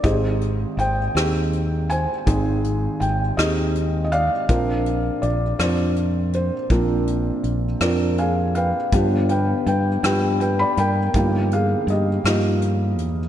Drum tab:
HH |xxxxxx|xxxxxx|xxxxxx|xxxxxx|
SD |---r--|---r--|---r--|---r--|
BD |o-----|o-----|o-----|o-----|

HH |xxxxxx|xxxxxx|
SD |---r--|---r--|
BD |o-----|o-----|